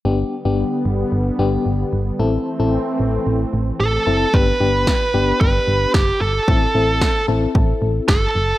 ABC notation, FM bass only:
X:1
M:4/4
L:1/16
Q:1/4=112
K:G
V:1 name="FM bass" clef=bass
G,,,2 z G,,,2 z G,,,2 G,,,2 G,,,2 G,,,2 G,,,2 | A,,,2 z A,,,2 z A,,,2 A,,,2 A,,,2 A,,,2 F,,,2 | G,,,2 G,,,3 z G,,,2 G,,,2 G,,,2 F,,,2 G,,,2 | A,,,2 A,,,3 z A,,,2 A,,,2 A,,,2 G,,,2 F,,,2 |]